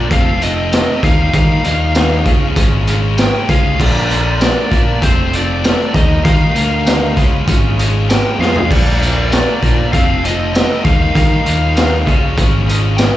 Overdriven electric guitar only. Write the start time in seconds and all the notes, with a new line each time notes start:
0.09 F2 C3 F3 A3 C4
0.41 F2 C3 F3 A3 C4
0.71 F2 C3 F3 A3 C4
1.02 D#3 G3 A#3 D#4
1.33 D#3 G3 A#3 D#4
1.64 D#3 G3 A#3 D#4
1.95 D#3 G3 A#3 D#4
2.25 C#3 F3 G#3 C#4
2.57 C#3 F3 G#3 C#4
2.87 C#3 F3 G#3 C#4
3.18 C#3 F3 G#3 C#4
3.48 C#3 F3 G#3 C#4
3.78 A#2 F3 A#3 D4
4.09 A#2 F3 A#3 D4
4.39 A#2 F3 A#3 D4
4.70 A#2 F3 A#3 D4
5.01 F2 C3 F3 A3 C4
5.32 F2 C3 F3 A3 C4
5.63 F2 C3 F3 A3 C4
5.95 D#3 G3 A#3 D#4
6.24 D#3 G3 A#3 D#4
6.55 D#3 G3 A#3 D#4
6.85 D#3 G3 A#3 D#4
7.16 C#3 F3 G#3 C#4
7.48 C#3 F3 G#3 C#4
7.79 C#3 F3 G#3 C#4
8.09 C#3 F3 G#3 C#4
8.39 C#3 F3 G#3 C#4
8.69 A#2 F3 A#3 D4
9.01 A#2 F3 A#3 D4
9.31 A#2 F3 A#3 D4
9.62 A#2 F3 A#3 D4
9.92 F2 C3 F3 A3 C4
10.23 F2 C3 F3 A3 C4
10.53 F2 C3 F3 A3 C4
10.84 D#3 G3 A#3 D#4
11.13 D#3 G3 A#3 D#4
11.45 D#3 G3 A#3 D#4
11.75 D#3 G3 A#3 D#4
12.05 C#3 F3 G#3 C#4
12.35 C#3 F3 G#3 C#4
12.67 C#3 F3 G#3 C#4
12.98 C#3 F3 G#3 C#4